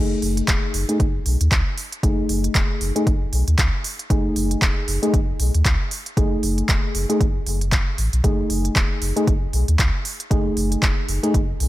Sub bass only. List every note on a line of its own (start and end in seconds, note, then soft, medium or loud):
0.00 0.16 F#1 loud
0.22 0.42 F#1 medium
0.48 0.59 D#1 medium
0.74 0.85 F#1 medium
1.00 1.19 F#1 loud
1.26 1.36 B1 medium
1.41 1.48 D#2 medium
1.52 1.62 C#2 loud
2.03 2.23 F#1 medium
2.29 2.49 F#1 loud
2.55 2.66 D#1 medium
2.81 2.92 F#1 medium
3.07 3.26 F#1 loud
3.33 3.43 B1 medium
3.48 3.55 D#2 medium
3.58 3.69 C#2 loud
4.10 4.30 F#1 loud
4.36 4.56 F#1 medium
4.62 4.73 D#1 medium
4.88 4.98 F#1 medium
5.14 5.33 F#1 loud
5.40 5.50 B1 medium
5.55 5.62 D#2 medium
5.65 5.76 C#2 loud
6.17 6.37 F#1 loud
6.43 6.63 F#1 loud
6.69 6.79 D#1 medium
6.95 7.05 F#1 medium
7.21 7.40 F#1 loud
7.46 7.80 F#1 medium
7.98 8.09 A1 medium
8.13 8.21 B1 loud
8.24 8.44 F#1 loud
8.50 8.69 F#1 medium
8.76 8.86 D#1 medium
9.02 9.12 F#1 medium
9.27 9.47 F#1 loud
9.53 9.64 B1 medium
9.68 9.76 D#2 medium
9.79 9.90 C#2 loud
10.31 10.50 F#1 loud
10.57 10.76 F#1 loud
10.83 10.93 D#1 medium
11.08 11.19 F#1 medium
11.34 11.54 F#1 loud
11.60 11.68 B1 medium